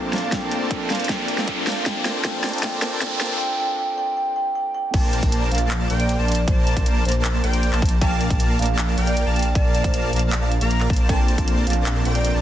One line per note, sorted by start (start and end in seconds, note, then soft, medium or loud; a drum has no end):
0.00 0.11 A#1 loud
0.00 1.83 A3 medium
0.00 0.11 A#3 medium
0.00 1.82 A#3 medium
0.00 0.31 C4 medium
0.00 0.32 D4 medium
0.00 1.83 D4 medium
0.00 0.33 F4 medium
0.00 0.33 A4 loud
0.00 0.11 A#4 medium
0.00 0.11 C5 medium
0.00 0.11 D5 medium
0.00 0.11 A5 medium
0.00 riser medium
0.13 0.30 A#1 loud
0.13 0.31 A#3 medium
0.13 0.31 A#4 medium
0.13 0.31 C5 medium
0.13 0.31 D5 medium
0.13 0.19 F5 medium
0.13 0.31 A5 medium
0.13 snare medium
0.13 closed hi-hat soft
0.18 closed hi-hat medium
0.23 0.29 F5 medium
0.31 0.59 A#1 medium
0.31 0.59 A#3 medium
0.31 0.58 C4 medium
0.31 0.59 D4 medium
0.31 0.59 F4 medium
0.31 0.59 A4 medium
0.31 0.59 A#4 medium
0.31 0.59 C5 medium
0.31 0.59 D5 medium
0.31 0.59 A5 loud
0.31 kick loud
0.31 snare medium
0.31 closed hi-hat medium
0.52 closed hi-hat medium
0.59 0.88 A#1 loud
0.59 0.88 A#3 medium
0.59 1.07 C4 medium
0.59 1.07 D4 medium
0.59 1.08 F4 medium
0.59 1.09 A4 loud
0.59 0.88 A#4 medium
0.59 0.88 C5 medium
0.59 0.88 D5 medium
0.59 0.88 A5 medium
0.71 kick loud
0.71 closed hi-hat medium
0.90 1.07 A#1 loud
0.90 1.08 A#3 medium
0.90 1.08 A#4 medium
0.90 1.08 C5 medium
0.90 1.08 D5 medium
0.90 0.96 F5 medium
0.90 1.08 A5 medium
0.90 snare medium
0.90 closed hi-hat soft
0.95 closed hi-hat medium
1.00 1.06 F5 medium
1.00 closed hi-hat medium
1.04 1.35 C4 medium
1.04 closed hi-hat medium
1.09 1.36 A#1 loud
1.09 1.36 A#3 medium
1.09 1.36 D4 medium
1.09 1.36 F4 medium
1.09 1.36 A4 medium
1.09 1.36 A#4 medium
1.09 1.36 C5 medium
1.09 1.36 D5 medium
1.09 1.36 A5 loud
1.09 kick loud
1.09 snare medium
1.09 closed hi-hat medium
1.28 closed hi-hat medium
1.36 1.65 A#1 loud
1.36 1.65 A#3 medium
1.36 1.84 C4 loud
1.36 1.84 D4 medium
1.36 1.85 F4 medium
1.36 1.65 A#4 medium
1.36 1.65 C5 medium
1.36 1.65 D5 medium
1.36 1.65 A5 medium
1.36 snare medium
1.40 1.86 A4 loud
1.48 kick medium
1.48 closed hi-hat medium
1.67 1.84 A#1 medium
1.67 1.85 A#3 medium
1.67 1.85 A#4 medium
1.67 1.85 C5 medium
1.67 1.85 D5 medium
1.67 1.73 F5 medium
1.67 1.85 A5 medium
1.67 snare medium
1.67 closed hi-hat soft
1.72 closed hi-hat medium
1.77 1.83 F5 medium
1.85 2.13 D#2 loud
1.85 3.38 D#3 medium
1.85 2.13 A#3 loud
1.85 3.38 A#3 medium
1.85 2.12 C4 medium
1.85 2.13 D4 medium
1.85 3.38 D4 medium
1.85 3.38 G4 loud
1.85 2.13 A4 medium
1.85 2.13 A#4 medium
1.85 2.15 G5 medium
1.85 2.13 A5 loud
1.85 kick loud
1.85 snare medium
1.85 closed hi-hat medium
2.05 snare medium
2.05 closed hi-hat medium
2.13 2.23 D#2 medium
2.13 2.23 A#3 medium
2.13 2.22 C4 loud
2.13 2.23 D4 medium
2.13 2.23 F4 medium
2.13 2.24 A4 loud
2.13 2.23 A#4 medium
2.13 2.23 C5 medium
2.13 2.23 D5 medium
2.13 2.23 A5 medium
2.24 2.52 D#2 loud
2.24 2.51 A#3 loud
2.24 2.50 C4 medium
2.24 2.51 D4 medium
2.24 2.51 F4 medium
2.24 2.52 A4 medium
2.24 2.51 A#4 medium
2.24 2.51 C5 medium
2.24 2.51 D5 medium
2.24 2.54 G5 medium
2.24 2.51 A5 loud
2.24 kick loud
2.24 snare medium
2.24 closed hi-hat medium
2.44 snare medium
2.44 closed hi-hat medium
2.49 2.60 C4 medium
2.49 closed hi-hat medium
2.53 2.61 D#2 loud
2.53 2.62 A#3 medium
2.53 2.61 D4 medium
2.53 2.62 F4 medium
2.53 2.63 A4 loud
2.53 2.62 A#4 medium
2.53 2.62 C5 medium
2.53 2.61 D5 medium
2.53 2.61 A5 medium
2.53 closed hi-hat medium
2.58 2.89 C4 medium
2.58 closed hi-hat medium
2.63 2.90 D#2 loud
2.63 2.92 G5 medium
2.63 kick loud
2.63 snare medium
2.63 closed hi-hat medium
2.82 snare medium
2.82 closed hi-hat medium
2.90 3.00 D#2 loud
2.90 3.00 A#3 medium
2.90 2.99 C4 loud
2.90 3.00 D4 medium
2.90 3.00 F4 medium
2.90 3.00 A#4 medium
2.90 3.00 C5 medium
2.90 3.00 D5 medium
2.90 3.00 A5 medium
2.94 3.01 A4 loud
3.01 3.28 D#2 loud
3.01 3.28 A#3 loud
3.01 3.28 F4 medium
3.01 3.29 A4 medium
3.01 3.28 A#4 medium
3.01 3.28 C5 medium
3.01 3.28 D5 medium
3.01 3.30 G5 medium
3.01 3.28 A5 loud
3.01 kick medium
3.01 snare medium
3.01 closed hi-hat medium
3.21 snare medium
3.21 closed hi-hat medium
3.26 3.37 C4 loud
3.26 closed hi-hat medium
3.30 3.38 D#2 loud
3.30 3.38 A#3 medium
3.30 3.38 D4 medium
3.30 3.39 F4 medium
3.30 3.39 A4 loud
3.30 3.38 A#4 medium
3.30 3.38 C5 medium
3.30 3.38 D5 medium
3.30 3.38 A5 medium
3.40 3.58 G5 medium
3.59 3.77 G5 loud
3.78 3.96 G5 loud
3.98 4.15 G5 loud
4.17 4.35 G5 loud
4.36 4.54 G5 loud
4.55 4.73 G5 loud
4.75 4.92 G5 loud
4.94 5.21 A#1 medium
4.94 5.20 A#3 loud
4.94 5.20 A#4 medium
4.94 5.20 C5 medium
4.94 5.20 D5 medium
4.94 5.23 G5 medium
4.94 5.20 A5 loud
4.94 kick loud
4.94 closed hi-hat medium
4.94 crash loud
5.13 closed hi-hat medium
5.23 5.50 A#1 loud
5.23 5.49 A#3 medium
5.23 5.49 A5 medium
5.23 kick medium
5.23 closed hi-hat medium
5.32 closed hi-hat medium
5.51 5.88 A#1 medium
5.51 5.88 A#3 medium
5.51 5.88 A#4 medium
5.51 5.88 C5 medium
5.51 5.88 D5 medium
5.51 5.58 F5 medium
5.51 5.88 A5 medium
5.51 5.88 A5 loud
5.51 closed hi-hat medium
5.55 closed hi-hat medium
5.58 5.67 F5 medium
5.58 closed hi-hat medium
5.71 clap loud
5.71 closed hi-hat medium
5.90 6.17 A#1 medium
5.90 6.17 A#3 medium
5.90 6.17 A#4 medium
5.90 6.17 C5 medium
5.90 6.17 D5 medium
5.90 6.17 G5 loud
5.90 closed hi-hat medium
6.00 6.12 D5 loud
6.00 closed hi-hat medium
6.09 closed hi-hat medium
6.19 6.46 A#1 loud
6.19 6.38 A#3 medium
6.19 6.38 A#4 medium
6.19 6.38 C5 medium
6.19 6.38 D5 medium
6.19 6.38 A5 medium
6.28 6.35 D5 medium
6.28 closed hi-hat medium
6.32 closed hi-hat medium
6.35 6.44 D5 medium
6.35 closed hi-hat medium
6.48 6.75 A#1 loud
6.48 6.74 A#3 loud
6.48 6.74 A#4 medium
6.48 6.74 C5 medium
6.48 6.86 C5 medium
6.48 6.74 D5 medium
6.48 6.74 A5 loud
6.48 kick loud
6.48 closed hi-hat medium
6.67 closed hi-hat medium
6.77 7.03 A#1 medium
6.77 7.03 A#3 medium
6.77 7.03 A#4 medium
6.77 7.03 C5 medium
6.77 7.03 A5 medium
6.77 kick medium
6.77 closed hi-hat medium
6.86 closed hi-hat medium
7.05 7.42 A#1 medium
7.05 7.42 A#3 medium
7.05 7.42 A#4 medium
7.05 7.42 C5 medium
7.05 7.34 C5 medium
7.05 7.42 D5 medium
7.05 7.42 A5 medium
7.05 closed hi-hat soft
7.09 closed hi-hat medium
7.12 closed hi-hat medium
7.25 clap loud
7.25 closed hi-hat medium
7.44 7.71 A#1 medium
7.44 7.70 A#3 medium
7.44 7.70 A#4 medium
7.44 7.70 C5 medium
7.44 7.70 D5 medium
7.44 7.70 G5 loud
7.44 closed hi-hat medium
7.54 closed hi-hat medium
7.63 closed hi-hat medium
7.73 8.00 A#1 loud
7.73 7.92 A#3 medium
7.73 7.92 A#4 medium
7.73 7.92 C5 medium
7.73 7.92 D5 medium
7.73 7.92 A5 medium
7.73 clap soft
7.82 kick loud
7.82 closed hi-hat medium
7.86 closed hi-hat medium
7.89 closed hi-hat medium
8.01 8.29 A#1 medium
8.01 8.28 A#3 loud
8.01 8.28 A#4 medium
8.01 8.28 D5 medium
8.01 8.28 F5 medium
8.01 8.30 G5 medium
8.01 8.28 A5 loud
8.01 kick loud
8.01 closed hi-hat medium
8.21 closed hi-hat medium
8.30 8.57 A#1 medium
8.30 8.57 A#3 medium
8.30 8.57 A#4 medium
8.30 8.57 D5 medium
8.30 8.57 F5 medium
8.30 8.57 A5 loud
8.30 8.57 A5 medium
8.30 kick medium
8.30 closed hi-hat medium
8.40 closed hi-hat medium
8.59 8.96 A#1 medium
8.59 8.95 A#3 medium
8.59 8.95 A#4 medium
8.59 8.95 D5 medium
8.59 8.65 F5 loud
8.59 8.95 F5 medium
8.59 8.95 A5 loud
8.59 8.95 A5 medium
8.59 closed hi-hat soft
8.62 closed hi-hat medium
8.66 8.75 F5 medium
8.66 closed hi-hat medium
8.78 clap loud
8.78 closed hi-hat medium
8.98 9.25 A#1 loud
8.98 9.24 A#3 medium
8.98 9.24 A#4 medium
8.98 9.24 D5 medium
8.98 9.24 F5 medium
8.98 9.24 G5 loud
8.98 closed hi-hat medium
9.07 9.20 D5 loud
9.07 closed hi-hat medium
9.17 closed hi-hat medium
9.27 9.53 A#1 medium
9.27 9.46 A#3 medium
9.27 9.46 A#4 medium
9.27 9.46 D5 medium
9.27 9.46 F5 medium
9.27 9.46 A5 loud
9.27 9.46 A5 medium
9.36 9.49 G5 medium
9.36 closed hi-hat soft
9.39 closed hi-hat medium
9.43 closed hi-hat medium
9.55 9.82 A#1 loud
9.55 9.82 A#3 loud
9.55 9.82 A#4 medium
9.55 9.82 D5 medium
9.55 9.62 D5 medium
9.55 9.82 F5 medium
9.55 9.82 A5 loud
9.55 kick loud
9.55 closed hi-hat medium
9.65 9.71 D5 medium
9.75 9.82 D5 medium
9.75 closed hi-hat medium
9.84 10.11 A#1 loud
9.84 10.11 A#3 medium
9.84 10.11 A#4 medium
9.84 9.90 C5 medium
9.84 10.11 D5 medium
9.84 10.11 F5 medium
9.84 10.11 A5 medium
9.84 kick medium
9.84 closed hi-hat medium
9.94 10.00 C5 medium
9.94 closed hi-hat medium
10.13 10.59 A#1 medium
10.13 10.49 A#3 medium
10.13 10.49 A#4 medium
10.13 10.49 D5 medium
10.13 10.49 F5 medium
10.13 10.49 A5 medium
10.13 10.49 A5 loud
10.13 closed hi-hat soft
10.16 closed hi-hat medium
10.19 closed hi-hat medium
10.32 clap loud
10.32 closed hi-hat medium
10.42 10.80 F5 medium
10.52 closed hi-hat medium
10.61 10.88 A#1 loud
10.61 10.88 A#3 loud
10.61 10.88 A#4 medium
10.61 10.88 D5 medium
10.61 10.88 F5 medium
10.61 10.88 A#5 loud
10.61 closed hi-hat medium
10.71 closed hi-hat medium
10.80 clap soft
10.90 11.07 A#1 loud
10.90 11.07 A#4 medium
10.90 11.07 C5 medium
10.90 11.07 A5 loud
10.90 kick loud
10.90 closed hi-hat soft
10.93 closed hi-hat medium
10.96 closed hi-hat medium
11.08 11.36 A#1 medium
11.08 11.36 A#3 loud
11.08 11.35 C4 medium
11.08 11.36 D4 medium
11.08 11.36 F4 medium
11.08 11.36 A4 medium
11.08 11.36 A#4 medium
11.08 11.36 C5 medium
11.08 11.36 D5 medium
11.08 11.38 G5 medium
11.08 11.36 A5 loud
11.08 kick loud
11.08 closed hi-hat medium
11.28 closed hi-hat medium
11.36 11.65 A#1 loud
11.36 11.65 A#3 medium
11.36 12.02 C4 loud
11.36 12.03 D4 medium
11.36 12.04 F4 medium
11.36 11.65 A#4 medium
11.36 11.65 D5 medium
11.36 11.65 A5 medium
11.36 kick medium
11.36 closed hi-hat medium
11.40 12.04 A5 loud
11.48 closed hi-hat medium
11.67 12.03 A#1 loud
11.67 12.03 A#3 medium
11.67 12.03 A#4 medium
11.67 12.03 C5 medium
11.67 12.03 D5 medium
11.67 11.73 F5 medium
11.67 12.03 A5 medium
11.67 closed hi-hat soft
11.70 closed hi-hat medium
11.73 11.83 F5 medium
11.73 closed hi-hat medium
11.86 clap loud
11.86 closed hi-hat medium
12.03 12.32 A#1 loud
12.03 12.32 A#3 medium
12.03 12.41 C4 medium
12.03 12.41 D4 medium
12.03 12.41 F4 medium
12.03 12.41 A4 medium
12.03 12.32 A#4 medium
12.03 12.32 C5 medium
12.03 12.32 D5 medium
12.03 12.32 G5 loud
12.03 closed hi-hat medium
12.15 12.28 D5 loud
12.15 closed hi-hat medium
12.25 closed hi-hat medium
12.34 12.41 A#1 loud
12.34 12.41 A#3 medium
12.34 12.41 A#4 medium
12.34 12.41 C5 medium
12.34 12.41 D5 medium
12.34 12.41 A5 medium